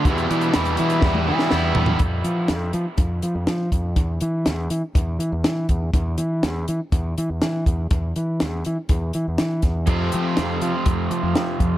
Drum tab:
HH |xxxxxxxx--------|x-x-x-x-x-x-x-x-|x-x-x-x-x-x-x-x-|x-x-x-x-x-x-x-x-|
SD |----o---o--oo---|----o-------o---|----o-------o---|----o-------o---|
T1 |---------o------|----------------|----------------|----------------|
FT |--------------oo|----------------|----------------|----------------|
BD |o-------o-------|o-------o-----o-|o-------o-----o-|o-------o-----o-|

HH |x-x-x-x-x-x-x-x-|x-x-x-x-x-x-x-x-|
SD |----o-------o-o-|----o-------o---|
T1 |----------------|----------------|
FT |----------------|----------------|
BD |o-------o-----o-|o-------o-----o-|